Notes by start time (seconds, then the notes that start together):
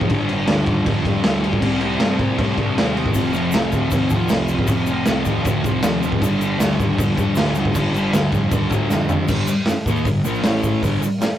Already playing: C3
0.01 kick
0.09 G1 G2 D3, kick, crash
0.13 G3
0.28 G3, crash
0.33 D3
0.47 D2 G2 D3, snare, crash
0.52 G3
0.66 D#2, kick, crash
0.85 F2 G2 D3, kick, crash
0.90 G3
1.04 G3, kick, crash
1.09 D3
1.23 D2 G2 D3, snare, crash
1.28 G3
1.41 G3, crash
1.46 D3
1.53 kick
1.60 C2 C3 G3, kick, crash
1.66 C4
1.80 C4, crash
1.86 G3
1.99 G2 C3 G3, snare, crash
2.05 C4
2.19 A#2, kick, crash
2.37 A2 C3 G3, kick, crash
2.43 C4
2.57 G2 C4, kick, crash
2.62 G3
2.75 D#2 C3 G3, snare, crash
2.80 C4
2.94 C4, crash
2.99 G3
3.06 kick
3.12 F1 F2 C3, kick, crash, shaker
3.17 F3
3.32 F3, crash, shaker
3.37 C3
3.51 C2 F2 C3, snare, crash, shaker
3.56 F3
3.72 D2, kick, crash, shaker
3.91 D#2 F2 C3, kick, crash, shaker
3.96 F3
4.10 F3, kick, crash, shaker
4.16 C3
4.29 C2 F2 C3, snare, crash, shaker
4.33 F3
4.48 F3, crash, shaker
4.54 C3
4.59 kick
4.67 F1 F2 C3, kick, crash, shaker
4.72 F3
4.86 F3, crash, shaker
4.92 C3
5.06 C2 F2 C3, snare, crash, shaker
5.11 F3
5.25 D#2, kick, crash, shaker
5.43 D2 F2 C3, kick, crash, shaker
5.48 F3
5.62 C2 F3, kick, crash, shaker
5.68 C3
5.81 D#2 F2 C3, snare, crash, shaker
5.86 F3
6.01 F3, crash, shaker
6.07 C3
6.12 kick
6.20 G1 G2 D3, kick, crash, shaker
6.25 G3
6.40 G3, crash, shaker
6.45 D3
6.58 D2 G2 D3, snare, crash, shaker
6.62 G3
6.79 D#2, kick, crash, shaker
6.97 F2 G2 D3, kick, crash, shaker
7.02 G3
7.15 G3, kick, crash, shaker
7.20 D3
7.35 D2 G2 D3, snare, crash, shaker
7.41 G3
7.55 G3, crash, shaker
7.59 D3
7.65 kick
7.73 G1 G2 D3, kick, crash, shaker
7.78 G3
7.93 G3, crash, shaker
7.97 D3
8.13 D2 G2 D3, snare, crash, shaker
8.18 G3
8.32 F2, kick, crash, shaker
8.50 D#2 G2 D3, kick, crash, shaker
8.55 G3
8.70 D2 G3, kick, crash, shaker
8.75 D3
8.89 F2 G2 D3, snare, shaker
8.94 G3
9.09 G3, floor tom, shaker
9.14 D3
9.27 G1 G2 D3 G3, kick, crash, shaker
9.47 muted picked electric bass stroke, muted distorted electric guitar stroke, shaker
9.66 muted picked electric bass stroke, muted distorted electric guitar stroke, snare, open hi-hat, shaker
9.86 D#2 D#3 A#3 D#4, kick, shaker
9.96 shaker
10.05 G1 G2 D3, kick, open hi-hat, shaker
10.24 A#1 A#2 F3 A#3, shaker
10.35 shaker
10.43 A1 A2 E3 A3, snare, open hi-hat, shaker
10.63 kick, shaker
10.82 G1 G2 D3 G3, kick, open hi-hat, shaker
11.02 muted distorted electric guitar stroke, muted picked electric bass stroke, shaker
11.20 muted distorted electric guitar stroke, muted picked electric bass stroke, snare, open hi-hat, shaker